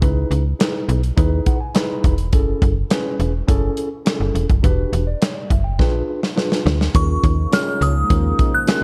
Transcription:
0.01 0.26 C#2 loud
0.01 0.42 D#4 medium
0.01 0.42 E4 medium
0.01 0.42 G#4 medium
0.01 0.42 B4 loud
0.01 kick loud
0.01 closed hi-hat medium
0.31 0.54 C#2 loud
0.31 closed hi-hat medium
0.59 0.99 D#4 medium
0.59 0.99 E4 medium
0.59 1.00 G#4 medium
0.59 1.00 B4 medium
0.59 snare loud
0.59 clap medium
0.59 closed hi-hat medium
0.89 1.12 B1 loud
0.89 closed hi-hat medium
1.03 closed hi-hat soft
1.16 1.41 D#2 medium
1.16 1.57 D#4 medium
1.16 1.57 E4 medium
1.16 1.57 G#4 medium
1.16 1.57 B4 loud
1.16 kick loud
1.16 closed hi-hat medium
1.46 1.60 F#5 medium
1.46 kick medium
1.46 closed hi-hat medium
1.61 1.74 G#5 medium
1.74 2.15 D#4 medium
1.74 2.15 E4 medium
1.74 2.15 G#4 medium
1.74 2.15 B4 loud
1.74 2.29 B5 medium
1.74 snare loud
1.74 clap medium
1.74 closed hi-hat medium
2.04 2.34 E1 medium
2.04 kick medium
2.04 closed hi-hat medium
2.18 closed hi-hat medium
2.33 2.56 F#1 loud
2.33 2.73 C#4 medium
2.33 2.73 E4 medium
2.33 2.73 G#4 medium
2.33 2.73 A4 medium
2.33 kick loud
2.33 closed hi-hat medium
2.62 2.85 F#1 loud
2.62 kick medium
2.62 closed hi-hat medium
2.90 3.30 C#4 medium
2.90 3.30 E4 medium
2.90 3.31 G#4 medium
2.90 3.31 B4 loud
2.90 snare loud
2.90 clap medium
2.90 closed hi-hat medium
3.20 3.43 E1 medium
3.20 closed hi-hat medium
3.47 3.72 F#1 medium
3.47 3.88 C#4 loud
3.47 3.88 E4 medium
3.47 3.88 G#4 medium
3.47 3.88 A4 loud
3.47 kick loud
3.47 closed hi-hat medium
3.77 closed hi-hat medium
4.05 4.46 C#4 medium
4.05 4.46 E4 medium
4.05 4.46 G#4 medium
4.05 4.46 A4 medium
4.05 snare loud
4.05 clap medium
4.05 closed hi-hat medium
4.20 4.32 F#1 medium
4.35 4.46 E1 medium
4.35 closed hi-hat medium
4.49 4.61 F#1 medium
4.49 kick medium
4.49 closed hi-hat soft
4.63 4.87 E1 loud
4.63 5.03 D4 medium
4.63 5.03 F#4 medium
4.63 5.04 G4 medium
4.63 4.92 B4 loud
4.63 kick loud
4.63 closed hi-hat medium
4.93 5.16 E1 loud
4.93 5.07 B4 medium
4.93 closed hi-hat medium
5.07 5.21 D5 medium
5.21 5.35 C#5 medium
5.21 snare loud
5.21 clap medium
5.21 closed hi-hat medium
5.35 5.49 D5 medium
5.50 5.81 F#1 medium
5.50 5.64 E5 medium
5.50 kick medium
5.50 closed hi-hat medium
5.64 5.92 G5 medium
5.79 6.03 A#1 medium
5.79 6.19 D4 medium
5.79 6.19 F4 medium
5.79 6.19 G#4 medium
5.79 6.19 B4 loud
5.79 kick loud
5.79 snare medium
6.23 snare medium
6.36 6.76 D4 medium
6.36 6.76 F4 medium
6.36 6.77 G#4 medium
6.36 6.76 B4 loud
6.36 snare medium
6.52 snare medium
6.66 6.89 D2 medium
6.66 snare loud
6.81 snare medium
6.94 7.18 D#2 loud
6.94 8.83 C#3 medium
6.94 8.83 F3 medium
6.94 8.83 G#3 medium
6.94 8.83 A#3 medium
6.94 7.34 C#4 medium
6.94 8.83 D#4 medium
6.94 7.34 F4 medium
6.94 7.34 G#4 medium
6.94 7.34 A#4 medium
6.94 7.54 C#6 medium
6.94 kick loud
6.94 closed hi-hat medium
7.24 7.47 D#2 medium
7.24 kick medium
7.24 closed hi-hat medium
7.52 7.92 C#4 medium
7.52 7.92 F4 medium
7.52 7.92 G#4 medium
7.52 7.92 C#5 loud
7.52 7.83 F6 loud
7.52 snare loud
7.52 clap medium
7.52 closed hi-hat medium
7.81 8.04 C#2 loud
7.81 8.56 D#6 loud
7.81 closed hi-hat medium
8.10 8.33 D#2 loud
8.10 8.50 C#4 medium
8.10 8.50 F4 medium
8.10 8.50 G#4 medium
8.10 8.50 A#4 medium
8.10 kick loud
8.10 closed hi-hat medium
8.39 kick loud
8.39 closed hi-hat medium
8.54 8.83 F#6 loud
8.67 8.83 C#4 medium
8.67 8.83 F4 medium
8.67 8.83 G#4 medium
8.67 8.83 A#4 medium
8.67 snare loud
8.67 clap medium
8.67 closed hi-hat medium

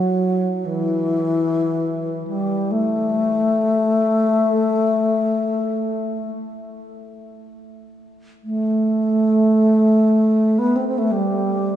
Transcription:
0.00 0.67 F#3 medium
0.00 0.79 E4 soft
0.65 2.27 E3 medium
2.27 2.73 G3 medium
2.71 6.30 A3 medium
8.44 10.60 A3 medium
10.59 10.77 B3 medium
10.76 10.87 C4 medium
10.88 11.00 C4 medium
10.98 11.13 A3 medium
11.11 11.76 G3 medium

